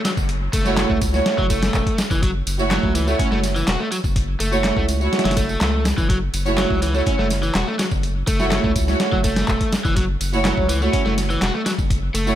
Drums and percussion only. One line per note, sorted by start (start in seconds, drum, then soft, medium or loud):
0.05 snare loud
0.05 closed hi-hat medium
0.05 ride medium
0.05 tambourine medium
0.17 kick medium
0.17 tambourine soft
0.29 closed hi-hat medium
0.29 tambourine soft
0.53 kick loud
0.53 closed hi-hat medium
0.53 ride medium
0.53 tambourine medium
0.65 snare soft
0.65 tambourine soft
0.77 snare loud
0.77 clap loud
0.77 closed hi-hat medium
0.77 tambourine soft
0.90 kick loud
1.02 kick medium
1.02 closed hi-hat medium
1.02 ride medium
1.02 tambourine medium
1.14 snare soft
1.14 tambourine soft
1.26 snare loud
1.26 closed hi-hat medium
1.26 tambourine soft
1.38 kick medium
1.50 kick medium
1.50 closed hi-hat medium
1.50 ride medium
1.50 tambourine medium
1.62 snare loud
1.62 closed hi-hat medium
1.62 tambourine soft
1.74 kick medium
1.74 clap loud
1.74 tambourine soft
1.87 kick medium
1.87 closed hi-hat medium
1.98 snare loud
1.98 closed hi-hat medium
1.98 ride medium
1.98 tambourine medium
2.11 kick medium
2.11 tambourine soft
2.23 kick loud
2.23 closed hi-hat medium
2.23 tambourine soft
2.47 closed hi-hat medium
2.47 ride medium
2.47 tambourine medium
2.59 tambourine soft
2.71 snare loud
2.71 clap loud
2.71 closed hi-hat medium
2.71 tambourine soft
2.83 kick loud
2.95 closed hi-hat medium
2.95 ride medium
2.95 tambourine medium
3.08 tambourine soft
3.19 kick loud
3.19 closed hi-hat medium
3.19 tambourine soft
3.32 snare soft
3.43 snare soft
3.43 closed hi-hat medium
3.43 ride medium
3.43 tambourine medium
3.56 tambourine soft
3.68 snare loud
3.68 clap loud
3.68 closed hi-hat medium
3.68 tambourine soft
3.92 closed hi-hat medium
3.92 ride medium
3.92 tambourine medium
4.04 kick medium
4.04 tambourine soft
4.16 kick loud
4.16 closed hi-hat medium
4.16 tambourine soft
4.40 closed hi-hat medium
4.40 ride medium
4.40 tambourine medium
4.52 tambourine soft
4.64 snare loud
4.64 clap loud
4.64 closed hi-hat medium
4.64 tambourine soft
4.77 kick loud
4.89 closed hi-hat medium
4.89 ride medium
4.89 tambourine medium
5.01 tambourine soft
5.13 snare medium
5.13 closed hi-hat medium
5.13 tambourine soft
5.19 snare medium
5.19 closed hi-hat medium
5.25 snare medium
5.25 closed hi-hat medium
5.31 snare medium
5.31 closed hi-hat medium
5.37 kick loud
5.37 closed hi-hat medium
5.37 ride medium
5.37 tambourine medium
5.49 tambourine soft
5.61 snare loud
5.61 clap loud
5.61 closed hi-hat medium
5.61 tambourine soft
5.85 snare loud
5.85 closed hi-hat medium
5.85 ride medium
5.85 tambourine medium
5.98 kick loud
5.98 tambourine soft
6.09 kick loud
6.09 closed hi-hat medium
6.09 tambourine soft
6.34 closed hi-hat medium
6.34 ride medium
6.34 tambourine medium
6.46 tambourine soft
6.58 snare loud
6.58 clap loud
6.58 closed hi-hat medium
6.58 tambourine soft
6.70 kick loud
6.82 closed hi-hat medium
6.82 ride medium
6.82 tambourine medium
6.94 tambourine soft
7.06 kick loud
7.06 closed hi-hat medium
7.06 tambourine soft
7.19 snare soft
7.30 snare soft
7.30 closed hi-hat medium
7.30 ride medium
7.30 tambourine medium
7.43 tambourine soft
7.55 snare loud
7.55 clap loud
7.55 closed hi-hat medium
7.55 tambourine soft
7.79 snare loud
7.79 closed hi-hat medium
7.79 ride medium
7.79 tambourine medium
7.91 kick medium
7.91 tambourine soft
8.03 closed hi-hat medium
8.03 tambourine soft
8.27 kick loud
8.27 closed hi-hat medium
8.27 ride medium
8.27 tambourine medium
8.40 snare soft
8.40 tambourine soft
8.51 snare loud
8.51 clap loud
8.51 closed hi-hat medium
8.51 tambourine soft
8.64 kick loud
8.76 kick loud
8.76 closed hi-hat medium
8.76 ride medium
8.76 tambourine medium
8.88 snare soft
8.88 tambourine soft
9.00 snare loud
9.00 closed hi-hat medium
9.00 tambourine soft
9.12 kick medium
9.24 kick medium
9.24 closed hi-hat medium
9.24 ride medium
9.24 tambourine medium
9.36 snare loud
9.36 closed hi-hat medium
9.36 tambourine soft
9.48 kick medium
9.48 clap loud
9.48 tambourine soft
9.61 kick medium
9.61 closed hi-hat medium
9.72 snare loud
9.72 closed hi-hat medium
9.72 ride medium
9.72 tambourine medium
9.85 kick loud
9.85 tambourine soft
9.96 kick loud
9.96 closed hi-hat medium
9.96 tambourine soft
10.21 closed hi-hat medium
10.21 ride medium
10.21 tambourine medium
10.33 tambourine soft
10.45 snare loud
10.45 clap loud
10.45 closed hi-hat medium
10.45 tambourine soft
10.57 kick loud
10.69 closed hi-hat medium
10.69 ride medium
10.69 tambourine medium
10.82 tambourine soft
10.93 kick loud
10.93 closed hi-hat medium
10.93 tambourine soft
11.06 snare soft
11.18 snare soft
11.18 closed hi-hat medium
11.18 ride medium
11.18 tambourine medium
11.30 tambourine soft
11.42 snare loud
11.42 clap loud
11.42 closed hi-hat medium
11.42 tambourine soft
11.66 snare loud
11.66 closed hi-hat medium
11.66 ride medium
11.66 tambourine medium
11.79 kick medium
11.79 tambourine soft
11.90 kick loud
11.90 closed hi-hat medium
11.90 tambourine soft
12.15 closed hi-hat medium
12.15 ride medium
12.15 tambourine medium
12.27 tambourine soft